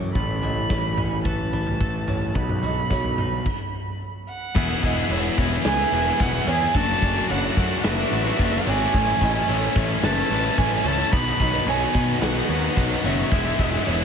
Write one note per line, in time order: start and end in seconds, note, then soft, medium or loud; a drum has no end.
0.00 0.12 F#2 medium
0.00 2.32 E3 soft
0.00 0.16 F#3 medium
0.00 0.16 A3 medium
0.00 0.13 D4 soft
0.00 0.16 D4 medium
0.00 0.13 F#4 medium
0.00 0.16 C#5 medium
0.14 2.32 A1 medium
0.14 1.53 A2 medium
0.14 2.34 C#4 soft
0.14 2.34 A4 medium
0.14 1.21 B5 medium
0.14 kick medium
0.14 floor tom medium
0.42 0.69 E3 medium
0.42 0.71 D#5 medium
0.42 floor tom medium
0.70 1.52 E3 medium
0.70 1.26 C#5 medium
0.70 kick medium
0.70 snare medium
0.98 2.36 C#4 medium
0.98 floor tom medium
0.98 mid tom medium
1.24 1.80 A3 medium
1.24 1.52 B4 medium
1.24 2.36 A5 medium
1.24 kick medium
1.24 floor tom medium
1.53 2.08 E3 medium
1.53 2.08 B4 medium
1.53 floor tom medium
1.67 floor tom medium
1.81 2.36 A3 medium
1.81 kick medium
1.81 mid tom medium
2.08 2.36 E3 medium
2.08 2.36 C#5 medium
2.08 floor tom medium
2.08 mid tom medium
2.34 3.43 B1 medium
2.34 3.46 B2 medium
2.34 3.45 F#3 medium
2.34 3.45 D#4 soft
2.34 3.45 B4 medium
2.34 4.00 B5 medium
2.34 kick medium
2.34 floor tom medium
2.49 mid tom medium
2.63 2.90 F#3 medium
2.63 2.91 D#5 medium
2.63 floor tom medium
2.90 3.46 F#3 medium
2.90 3.46 C#5 medium
2.90 kick medium
2.90 snare medium
3.04 floor tom medium
3.18 3.46 D#4 medium
3.18 floor tom medium
3.18 mid tom medium
3.46 kick medium
3.46 crash medium
4.29 5.34 F#5 medium
4.55 4.74 E1 medium
4.55 5.93 E2 medium
4.55 4.81 E3 medium
4.55 4.70 B3 loud
4.55 4.69 E4 loud
4.55 6.73 G#4 medium
4.55 4.67 G#4 loud
4.55 8.90 F#5 medium
4.55 6.73 E6 medium
4.55 kick loud
4.55 crash loud
4.55 crash medium
4.68 4.82 B3 medium
4.68 4.83 E4 medium
4.68 4.83 G#4 medium
4.81 5.02 E1 medium
4.81 5.09 E3 medium
4.81 4.97 B3 medium
4.81 4.97 E4 medium
4.81 4.95 G#4 medium
4.81 5.11 D#5 medium
4.81 kick medium
4.81 crash medium
4.96 5.10 B3 medium
4.96 5.11 E4 medium
4.96 5.11 G#4 medium
5.09 5.28 E1 medium
5.09 5.37 E3 medium
5.09 5.37 B3 loud
5.09 5.66 E4 medium
5.09 5.39 E4 medium
5.09 5.39 G#4 medium
5.09 5.66 C#5 medium
5.09 crash loud
5.24 5.37 B3 medium
5.24 5.38 E4 medium
5.24 5.38 G#4 medium
5.38 5.56 E1 medium
5.38 5.92 E3 medium
5.38 6.20 B3 medium
5.38 5.79 B3 medium
5.38 5.79 E4 medium
5.38 5.77 G#4 medium
5.38 kick medium
5.38 crash medium
5.51 5.80 B3 medium
5.51 5.80 E4 medium
5.51 5.77 G#4 medium
5.65 5.83 C#2 loud
5.65 6.48 E4 medium
5.65 5.91 B4 medium
5.65 6.22 G#5 loud
5.65 snare loud
5.65 crash medium
5.78 5.93 B3 medium
5.78 5.94 E4 medium
5.78 5.94 G#4 medium
5.92 6.11 E1 medium
5.92 6.20 E3 medium
5.92 6.76 G#3 medium
5.92 6.07 B3 medium
5.92 6.07 E4 medium
5.92 6.04 G#4 medium
5.92 6.48 B4 medium
5.92 crash medium
6.06 6.19 B3 medium
6.06 6.21 E4 medium
6.06 6.21 G#4 medium
6.20 6.39 E1 medium
6.20 6.46 E3 loud
6.20 6.47 B3 loud
6.20 6.75 B3 medium
6.20 6.48 E4 loud
6.20 6.48 G#4 loud
6.20 6.49 F#5 medium
6.20 kick medium
6.20 crash medium
6.47 6.65 E2 medium
6.47 6.74 E3 medium
6.47 6.62 B3 medium
6.47 6.78 E4 medium
6.47 6.62 E4 medium
6.47 6.60 G#4 medium
6.47 6.75 C#5 medium
6.47 6.76 G#5 loud
6.47 crash medium
6.61 6.75 B3 medium
6.61 6.76 E4 medium
6.61 6.73 G#4 medium
6.74 6.93 F#1 loud
6.74 7.01 F#3 loud
6.74 8.12 F#3 medium
6.74 6.91 A3 loud
6.74 8.92 D4 medium
6.74 6.88 D4 loud
6.74 6.87 F#4 loud
6.74 7.29 A5 loud
6.74 8.92 E6 medium
6.74 kick loud
6.74 crash medium
6.88 7.03 A3 medium
6.88 7.03 D4 medium
6.88 7.04 F#4 medium
7.02 7.20 F#1 medium
7.02 7.29 F#3 medium
7.02 7.18 A3 medium
7.02 7.17 D4 medium
7.02 7.15 F#4 medium
7.02 7.30 D5 medium
7.02 kick medium
7.02 crash medium
7.16 7.30 A3 medium
7.16 7.31 D4 medium
7.16 7.31 F#4 medium
7.16 snare soft
7.29 7.48 F#1 loud
7.29 7.56 F#3 loud
7.29 7.58 A3 medium
7.29 7.58 D4 medium
7.29 7.83 E4 medium
7.29 7.59 F#4 loud
7.29 7.85 C#5 medium
7.29 7.86 F#5 loud
7.29 crash medium
7.43 7.57 A3 medium
7.43 7.56 D4 medium
7.43 7.57 F#4 medium
7.57 7.75 F#2 medium
7.57 8.11 F#3 medium
7.57 7.99 A3 medium
7.57 8.39 D4 medium
7.57 7.98 D4 medium
7.57 7.97 F#4 medium
7.57 kick medium
7.57 crash medium
7.70 7.99 A3 medium
7.70 7.98 D4 medium
7.70 7.97 F#4 medium
7.84 8.03 F#1 loud
7.84 8.66 E4 medium
7.84 8.11 B4 medium
7.84 8.69 E5 loud
7.84 snare loud
7.84 crash medium
7.98 8.12 A3 medium
7.98 8.13 D4 medium
7.98 8.13 F#4 medium
8.11 8.30 A1 medium
8.11 8.38 F#3 medium
8.11 8.94 A3 medium
8.11 8.27 A3 medium
8.11 8.26 D4 medium
8.11 8.24 F#4 medium
8.11 8.67 B4 medium
8.11 crash medium
8.26 8.39 A3 medium
8.26 8.40 D4 medium
8.26 8.40 F#4 medium
8.39 8.57 F#1 loud
8.39 8.66 F#3 medium
8.39 8.67 A3 loud
8.39 8.94 D4 medium
8.39 8.67 D4 loud
8.39 8.68 F#4 loud
8.39 kick medium
8.39 crash medium
8.66 8.85 G#1 medium
8.66 8.93 F#3 medium
8.66 8.81 A3 medium
8.66 8.80 D4 medium
8.66 8.94 E4 medium
8.66 8.79 F#4 medium
8.66 8.94 C#5 medium
8.66 9.76 G#5 loud
8.66 crash medium
8.80 8.93 A3 medium
8.80 8.93 D4 medium
8.80 8.92 F#4 medium
8.93 9.12 A1 medium
8.93 9.35 A2 loud
8.93 10.31 A2 medium
8.93 9.20 E3 loud
8.93 9.09 A3 loud
8.93 9.08 C#4 loud
8.93 9.06 E4 loud
8.93 11.11 A4 medium
8.93 11.11 C#5 medium
8.93 11.11 E6 medium
8.93 kick loud
8.93 crash medium
9.07 9.20 A3 medium
9.07 9.21 C#4 medium
9.07 9.22 E4 medium
9.21 9.40 A1 medium
9.21 9.48 E3 medium
9.21 9.36 A3 medium
9.21 9.34 C#4 medium
9.21 9.33 E4 medium
9.21 9.49 D#5 medium
9.21 kick medium
9.21 crash medium
9.34 9.48 A3 medium
9.34 9.49 C#4 medium
9.34 9.50 E4 medium
9.49 9.67 A1 medium
9.49 10.03 A2 medium
9.49 9.74 E3 loud
9.49 9.76 A3 medium
9.49 9.76 C#4 medium
9.49 9.77 E4 loud
9.49 10.03 A4 medium
9.49 10.04 C#5 medium
9.49 crash loud
9.62 9.75 A3 medium
9.62 9.75 C#4 medium
9.62 9.76 E4 medium
9.75 9.94 A1 loud
9.75 10.28 E3 medium
9.75 10.18 A3 medium
9.75 10.57 C#4 medium
9.75 10.17 C#4 medium
9.75 10.15 E4 medium
9.75 kick loud
9.75 crash medium
9.89 10.17 A3 medium
9.89 10.16 C#4 medium
9.89 10.14 E4 medium
10.03 10.21 F#1 loud
10.03 10.84 A4 medium
10.03 10.30 B4 loud
10.03 10.59 A5 loud
10.03 snare loud
10.03 crash loud
10.17 10.30 A3 medium
10.17 10.30 C#4 medium
10.17 10.31 E4 medium
10.30 10.48 A1 medium
10.30 10.57 E3 medium
10.30 10.45 A3 medium
10.30 11.13 A3 medium
10.30 10.44 C#4 loud
10.30 10.43 E4 loud
10.30 10.86 B4 medium
10.30 crash medium
10.44 10.58 A3 medium
10.44 10.58 C#4 medium
10.44 10.58 E4 medium
10.57 10.76 A1 medium
10.57 11.11 A2 loud
10.57 10.83 E3 loud
10.57 10.84 A3 loud
10.57 11.13 C#4 medium
10.57 10.85 C#4 loud
10.57 10.85 E4 loud
10.57 10.86 G#5 loud
10.57 kick medium
10.57 crash medium
10.84 11.03 C#2 medium
10.84 11.11 E3 medium
10.84 10.99 A3 medium
10.84 10.98 C#4 medium
10.84 10.97 E4 medium
10.84 11.13 A4 medium
10.84 11.13 C#5 medium
10.84 11.13 A5 loud
10.84 crash medium
10.98 11.12 A3 medium
10.98 11.11 C#4 medium
10.98 11.11 E4 medium
11.12 11.31 B1 loud
11.12 11.53 B2 loud
11.12 12.50 B2 medium
11.12 11.38 D#3 loud
11.12 11.28 F#3 loud
11.12 11.27 B3 loud
11.12 11.25 D#4 loud
11.12 13.30 B4 medium
11.12 14.04 F#5 medium
11.12 11.70 B5 loud
11.12 13.30 D#6 medium
11.12 kick loud
11.12 crash medium
11.26 11.39 F#3 medium
11.26 11.40 B3 medium
11.26 11.40 D#4 medium
11.39 11.58 B1 medium
11.39 11.66 D#3 medium
11.39 11.55 F#3 medium
11.39 11.54 B3 medium
11.39 11.51 D#4 medium
11.39 11.68 D#5 medium
11.39 kick medium
11.39 crash medium
11.52 11.68 F#3 medium
11.52 11.68 B3 medium
11.52 11.68 D#4 medium
11.52 snare soft
11.66 11.85 B1 loud
11.66 12.22 B2 medium
11.66 11.92 D#3 medium
11.66 11.94 F#3 medium
11.66 11.95 B3 loud
11.66 11.95 D#4 loud
11.66 12.21 F#4 medium
11.66 12.23 C#5 medium
11.66 12.22 G#5 loud
11.66 crash medium
11.81 11.96 F#3 medium
11.81 11.96 B3 medium
11.81 11.96 D#4 medium
11.94 12.13 B2 medium
11.94 12.47 D#3 medium
11.94 12.37 F#3 medium
11.94 12.35 B3 medium
11.94 12.77 D#4 medium
11.94 12.34 D#4 medium
11.94 kick medium
11.94 crash medium
12.09 12.37 F#3 medium
12.09 12.35 B3 medium
12.09 12.34 D#4 medium
12.22 12.40 B1 loud
12.22 13.04 F#4 medium
12.22 12.48 B4 medium
12.22 13.08 F#5 medium
12.22 snare loud
12.22 crash medium
12.35 12.49 F#3 medium
12.35 12.49 B3 medium
12.35 12.50 D#4 medium
12.48 12.67 D#2 medium
12.48 12.75 D#3 medium
12.48 12.64 F#3 medium
12.48 12.62 B3 medium
12.48 13.32 B3 medium
12.48 12.61 D#4 medium
12.48 13.04 B4 medium
12.48 crash medium
12.62 12.77 F#3 medium
12.62 12.76 B3 medium
12.62 12.77 D#4 medium
12.76 12.95 B1 medium
12.76 13.29 B2 loud
12.76 13.02 D#3 loud
12.76 13.04 F#3 loud
12.76 13.04 B3 loud
12.76 13.32 D#4 medium
12.76 13.05 D#4 loud
12.76 kick medium
12.76 crash medium
13.03 13.22 F#1 loud
13.03 13.29 D#3 medium
13.03 13.19 F#3 medium
13.03 13.17 B3 medium
13.03 13.16 D#4 medium
13.03 13.32 F#4 medium
13.03 13.32 C#5 medium
13.03 14.04 E5 medium
13.03 crash medium
13.17 13.30 F#3 medium
13.17 13.30 B3 medium
13.17 13.29 D#4 medium
13.30 13.50 E1 medium
13.30 13.57 E3 medium
13.30 13.46 G#3 loud
13.30 13.45 B3 loud
13.30 13.44 E4 loud
13.30 14.04 G#4 medium
13.30 14.04 E6 medium
13.30 kick loud
13.30 crash medium
13.44 13.58 G#3 medium
13.44 13.58 B3 medium
13.44 13.60 E4 medium
13.58 13.77 E1 medium
13.58 13.84 E3 medium
13.58 13.73 G#3 medium
13.58 13.72 B3 medium
13.58 13.71 E4 medium
13.58 13.87 D#5 medium
13.58 kick medium
13.58 crash medium
13.71 13.84 G#3 medium
13.71 13.85 B3 medium
13.71 13.87 E4 medium
13.71 snare soft
13.85 14.04 E1 medium
13.85 14.04 E3 medium
13.85 14.04 G#3 medium
13.85 14.04 B3 medium
13.85 14.04 E4 loud
13.85 14.04 C#5 medium
13.85 crash medium
14.00 14.04 B3 medium
14.00 14.04 E4 medium